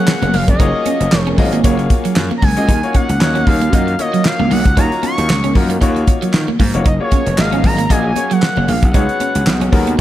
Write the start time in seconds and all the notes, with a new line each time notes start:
Already playing: F#3 A#3 C#4 F#4 G#4 A#4 C#5 F#5
0.07 muted clean electric guitar stroke, snare, clap
0.22 F1 A#3, closed hi-hat, high conga
0.33 F#1 A#3 F5, open hi-hat, muted conga, low conga
0.48 F1 D#5, kick, closed hi-hat
0.60 F#1 A#3 D#4 F4 F#4 G#4 C#5, kick, closed hi-hat, muted conga, low conga
0.86 C#4, closed hi-hat, muted conga, high conga
1.00 F#1, muted clean electric guitar stroke, closed hi-hat
1.12 F1, snare, clap
1.19 C#5
1.27 C#4, high conga
1.38 G#1 A#3 F4 F#4 G#4 D#5, muted clean electric guitar stroke, kick, open hi-hat, muted conga, low conga
1.52 A#3, closed hi-hat
1.64 F#1 A#3 F4 F#4 G#4 C#5, kick, closed hi-hat, muted conga, high conga
1.79 muted clean electric guitar stroke, closed hi-hat
1.90 kick, closed hi-hat, high conga
2.05 F#3, closed hi-hat
2.16 F#2, muted clean electric guitar stroke, snare, clap
2.31 A#3, high conga
2.37 A#5
2.42 C#2 A#3 G#5, kick, open hi-hat, low conga
2.57 C#2 A#3 F4 F#4 G#4 D#5, closed hi-hat
2.69 D#2 D#3 F#3 A#3 D#4, kick, closed hi-hat, low conga
2.83 A#3 D#4 F4 F#4 C#5, closed hi-hat
2.94 C#4 F#5, kick, closed hi-hat, muted conga, high conga
3.09 C#2, muted clean electric guitar stroke, closed hi-hat
3.20 D#2 A#3 C#4 D#4 F#4 C#5, snare, clap, muted conga
3.35 C#4, closed hi-hat, high conga
3.47 D#2 F5, muted clean electric guitar stroke, kick, open hi-hat, low conga
3.61 A#3, closed hi-hat
3.73 F#2 A#3 D#4 F4 F#4 D#5 F5, kick, closed hi-hat, muted conga, high conga
3.87 muted clean electric guitar stroke, closed hi-hat
3.99 A#3 D#4 F4 F#4 C#5 D#5, closed hi-hat, muted conga, high conga
4.13 F#3, closed hi-hat
4.25 F5, muted clean electric guitar stroke, snare, clap, muted conga
4.39 C#2 A#3, high conga
4.51 B1 A#3 F#5, open hi-hat, muted conga, low conga
4.65 C#2, kick, closed hi-hat
4.77 D#2 A#3 D#4 F4 F#4 C#5 A#5, kick, closed hi-hat, muted conga, low conga
4.92 closed hi-hat
5.03 C#4 C#6, closed hi-hat, high conga
5.18 D#2, muted clean electric guitar stroke, closed hi-hat
5.29 C#2, snare, clap
5.44 C#4, closed hi-hat, high conga
5.55 F#2 A#3 D#4 F4 F#4 A#4, muted clean electric guitar stroke, kick, open hi-hat, low conga
5.70 A#3, closed hi-hat
5.81 D#2 A#3 D#4 F4 F#4 C#5, kick, closed hi-hat, high conga
5.96 muted clean electric guitar stroke, closed hi-hat
6.07 kick, closed hi-hat, muted conga, high conga
6.22 F#3, closed hi-hat
6.34 D#3, muted clean electric guitar stroke, snare, clap, muted conga
6.48 A#3, high conga
6.59 G#2 A#3, kick, open hi-hat, muted conga, low conga
6.74 F1 A#3 D#4 F4 F#4 C#5, closed hi-hat
6.85 F#1 F#3 C#4 D#4 G#4 A#4 D#5, kick, closed hi-hat, low conga
7.00 A#3 F4 F#4 G#4 C#5
7.12 C#4, kick, closed hi-hat, high conga
7.26 F1, muted clean electric guitar stroke, closed hi-hat
7.37 G#1 A#3 F4 F#4 G#4 D#5 F5, snare, clap
7.52 C#4, closed hi-hat, high conga
7.64 G#1 A#5, muted clean electric guitar stroke, kick, open hi-hat, muted conga, low conga
7.78 A#3, closed hi-hat
7.90 A#1 A#3 F4 F#4 G#4 D#5 G#5, kick, closed hi-hat, muted conga, high conga
8.05 muted clean electric guitar stroke
8.16 A#3 C#4 F#4 G#4 C#5, closed hi-hat, muted conga, high conga
8.31 F#3 F#5, closed hi-hat
8.42 muted clean electric guitar stroke, snare, clap, muted conga
8.57 F#1 A#3, high conga
8.68 A#1 A#3 F5, open hi-hat, muted conga, low conga
8.83 B1 F#5, kick, closed hi-hat
8.94 C#2 C#3 G#3 B3 C#4 D#4 F#4 G#4 C#5, kick, closed hi-hat, muted conga, low conga
9.09 closed hi-hat
9.20 C#4, closed hi-hat, high conga
9.35 C#2, muted clean electric guitar stroke, closed hi-hat
9.47 B1, snare, clap
9.61 C#4, closed hi-hat, high conga
9.72 D#2 B3 C#4 F#4 G#4 A#4 A#5, muted clean electric guitar stroke, kick, open hi-hat, muted conga, low conga
9.87 B3, closed hi-hat